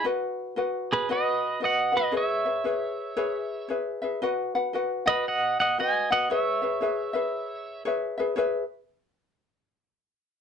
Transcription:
X:1
M:4/4
L:1/8
Q:"Swing" 1/4=115
K:E
V:1 name="Pedal steel guitar"
z3 [GB] [Bd]2 [df] [Bd] | [ce]6 z2 | z3 [Bd] [df] [df] [dg] [df] | [ce]6 z2 |
z8 |]
V:2 name="Ukulele"
[FBdf]2 [FBdf]2 [FBdf]2 [FBdf] [FBf] | [GBce] [GBe] [GBce]2 [GBce]2 [GBce] [GBe] | [FBdf] [FBf] [FBdf] [FBf]3 [FBdf] [FBf] | [GBce] [GBe] [GBce] [GBe]3 [GBce] [GBe] |
[GBce] z6 z |]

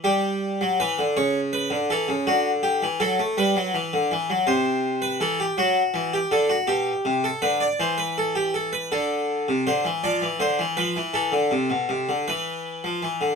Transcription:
X:1
M:6/8
L:1/16
Q:3/8=54
K:C
V:1 name="Harpsichord"
G4 B2 ^c2 B2 A2 | ^F2 G2 A2 B6 | c3 B A G ^F3 G A F | G3 A B d c B A G A B |
[K:Ddor] A4 c2 d2 c2 B2 | A6 B6 |]
V:2 name="Harpsichord" clef=bass
G,3 ^F, E, D, ^C,3 D, E, C, | D,3 E, ^F, A, G, F, E, D, E, F, | C,4 E,2 ^F,2 E,2 D,2 | B,,2 C,2 D,2 E,6 |
[K:Ddor] D,3 C, D, E, F, E, D, E, F, E, | E, D, C, B,, C, D, E,3 F, E, D, |]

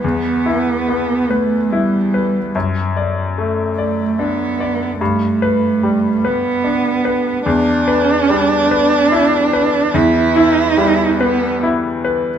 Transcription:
X:1
M:6/8
L:1/8
Q:3/8=48
K:Em
V:1 name="Grand piano"
[E,,B] E B, B E B | F,, d A, d D d | G,, B G, B D B | E,, B G, B E B |
E,, E G, B E B |]
V:2 name="Cello"
B,3 A, G,2 | z3 A, B,2 | A,3 B,3 | D6 |
E3 B, z2 |]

